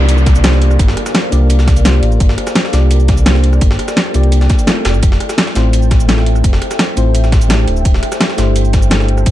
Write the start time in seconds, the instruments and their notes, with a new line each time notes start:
Already playing: sub bass C2, fm electric piano A#3 D4 F4 G4 D5, ambient pad A4 A#4 D5 F5, downlifter
0.09 closed hi-hat, cabasa
0.18 cabasa
0.26 kick, snare, closed hi-hat, cabasa
0.35 cabasa
0.43 fm electric piano A#3 D4 F4 G4 C5, snare, closed hi-hat, cabasa
0.53 snare
0.62 closed hi-hat
0.71 cross-stick, cabasa
0.79 sub bass G1, kick, closed hi-hat, cabasa
0.88 snare
0.97 cross-stick, closed hi-hat
1.06 cross-stick, snare, closed hi-hat, cabasa
1.15 snare, closed hi-hat, cabasa
1.30 sub bass C2, fm electric piano A#3 D4 F4 G4 D5, closed hi-hat, cabasa
1.50 closed hi-hat, cabasa
1.59 snare, cabasa
1.68 kick, snare, closed hi-hat, cabasa
1.76 closed hi-hat, cabasa
1.84 fm electric piano A#3 D4 F4 G4 C5, snare, closed hi-hat, cabasa
2.03 sub bass A1, closed hi-hat
2.12 cabasa
2.20 sub bass G1, ambient pad G5, kick, closed hi-hat, cabasa
2.29 snare
2.38 cross-stick, closed hi-hat
2.47 cross-stick, snare, closed hi-hat, cabasa
2.55 snare, closed hi-hat, cabasa
2.65 snare
2.72 sub bass C2, fm electric piano A#3 D4 F4 G4 D5, snare, closed hi-hat, cabasa
2.91 closed hi-hat, cabasa
3.00 cabasa
3.08 kick, snare, closed hi-hat, cabasa
3.17 cabasa
3.25 fm electric piano A#3 D4 F4 G4 C5, snare, closed hi-hat, cabasa
3.35 snare
3.44 closed hi-hat
3.53 cross-stick, cabasa
3.61 sub bass G1, kick, closed hi-hat, cabasa
3.71 snare
3.79 cross-stick, closed hi-hat
3.88 cross-stick, snare, closed hi-hat, cabasa
3.97 snare, closed hi-hat, cabasa
4.13 sub bass C2, fm electric piano A#3 D4 F4 G4 D5, closed hi-hat, cabasa
4.23 closed hi-hat
4.32 closed hi-hat, cabasa
4.41 snare, cabasa
4.50 kick, snare, closed hi-hat, cabasa
4.59 closed hi-hat, cabasa
4.66 fm electric piano A3 C4 E4 F4 A4, snare, closed hi-hat, cabasa
4.85 sub bass F1, ambient pad C5 E5, snare, closed hi-hat
4.94 sub bass A1, cabasa
5.03 sub bass F1, kick, closed hi-hat, cabasa
5.12 snare
5.20 cross-stick, closed hi-hat
5.29 cross-stick, snare, closed hi-hat, cabasa
5.38 snare, closed hi-hat, cabasa
5.47 snare
5.55 sub bass A1, fm electric piano A3 C4 E4 F4 C5, snare, closed hi-hat, cabasa
5.73 closed hi-hat, cabasa
5.82 cabasa
5.91 kick, snare, closed hi-hat, cabasa
6.00 cabasa
6.08 fm electric piano A3 C4 E4 F4 A4, snare, closed hi-hat, cabasa
6.18 snare
6.26 closed hi-hat
6.35 cross-stick, cabasa
6.44 sub bass F1, kick, closed hi-hat, cabasa
6.53 snare
6.62 cross-stick, closed hi-hat
6.71 cross-stick, snare, closed hi-hat, cabasa
6.79 snare, closed hi-hat, cabasa
6.96 sub bass A1, fm electric piano A3 C4 E4 F4 C5, closed hi-hat, cabasa
7.15 closed hi-hat, cabasa
7.24 snare, cabasa
7.32 kick, snare, closed hi-hat, cabasa
7.41 closed hi-hat, cabasa
7.48 fm electric piano A3 D4 E4 G4 A4, snare, closed hi-hat, cabasa
7.68 sub bass D1, closed hi-hat
7.76 cabasa
7.85 sub bass D1, kick, closed hi-hat, cabasa
7.94 snare
8.03 cross-stick, closed hi-hat
8.12 cross-stick, snare, closed hi-hat, cabasa
8.21 snare, closed hi-hat, cabasa
8.30 snare
8.37 sub bass G1, fm electric piano A3 D4 E4 G4 C5, snare, closed hi-hat, cabasa
8.56 closed hi-hat, cabasa
8.65 cabasa
8.73 kick, snare, closed hi-hat, cabasa
8.82 cabasa
8.90 fm electric piano A3 D4 E4 G4 A4, snare, closed hi-hat, cabasa
9.00 snare
9.08 closed hi-hat
9.17 cross-stick, cabasa
9.26 sub bass D1, kick, closed hi-hat, cabasa